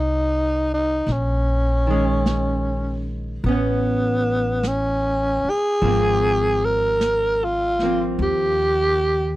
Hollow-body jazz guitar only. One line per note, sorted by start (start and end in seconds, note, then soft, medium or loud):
0.00 1.07 F3 soft
0.00 1.07 A#3 soft
1.87 3.44 D#3 soft
1.87 3.46 G#3 soft
1.92 3.46 C#4 soft
3.46 5.82 B3 soft
3.46 5.84 C#4 soft
5.82 7.81 F3 soft
5.82 7.82 A#3 soft
5.87 7.84 C4 soft
7.82 9.36 F3 soft
7.82 9.36 A#3 soft
7.82 9.36 C4 soft